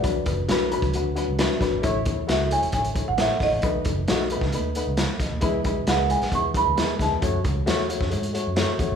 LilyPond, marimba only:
\new Staff \with { instrumentName = "Marimba" } { \time 4/4 \key b \dorian \tempo 4 = 134 d''4 r2. | r4 e''8 gis''8 gis''8. fis''16 e''8 dis''8~ | dis''4 r2. | r4 fis''8 gis''8 cis'''8 b''4 a''8~ |
a''8 r2. r8 | }